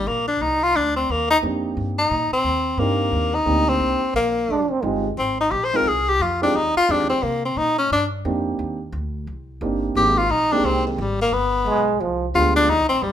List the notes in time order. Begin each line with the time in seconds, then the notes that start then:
0.07 A#1 A#3
0.28 D4
0.41 C2 D#4
0.63 F4
0.75 D2 D4
0.96 C4
1.10 D#2 A#3
1.31 D#4
1.42 F2 A#3 C4 D4 D#4 G4
1.77 G2
1.98 D#4
2.11 A#2
2.32 C4, muted upright bass stroke
2.44 D#2
2.77 G2 A#3 C4 D4 D#4 G4
3.12 D#2
3.35 D#4
3.46 D2 A#3 C4 D4 D#4 G4
3.69 C4
3.80 C2
4.01 muted upright bass stroke
4.14 A#1 A#3
4.48 F1 D4
4.71 C4
4.83 G1 G#3 C4 D#4 F4 G4
5.17 G#1 C4
5.40 D#4
5.51 A#1 G4
5.65 C5
5.73 G#3 C4 D#4 F4 G#4 A#4
5.86 C2 G#4
6.09 G4
6.20 F2 F4
6.42 G#3 C4 D4 D#4 F4 G4
6.54 D#2 D#4
6.76 F4, muted upright bass stroke
6.88 F2 G#3 C4 D4 D#4 F4 G4
7.00 D#2
7.09 C2 C4
7.23 C3 A#3
7.45 C4
7.57 A#2 D#4
7.78 C#4
7.91 G2 D4
8.25 F2 A#3 C4 D4 D#4 G4
8.59 D#2
8.92 D2
9.27 C2
9.61 G1 A#3 C4 D4 D#4 G4
9.95 G#1 G#3 A#3 C4 D#4 G4
10.18 F4
10.30 A#1 D#4
10.52 G#3 A#3 C4 D4 D#4 G4
10.64 C2 C4
10.87 D#3
10.98 G#1 G3
11.21 A#3
11.32 G1 B3
11.66 B1 G#3
12.00 C2 F3
12.34 D2 G#3 B3 D4 F4 G4
12.56 D4
12.68 D#2 D#4
12.80 C2
12.89 A#1 C4
13.02 G2 G3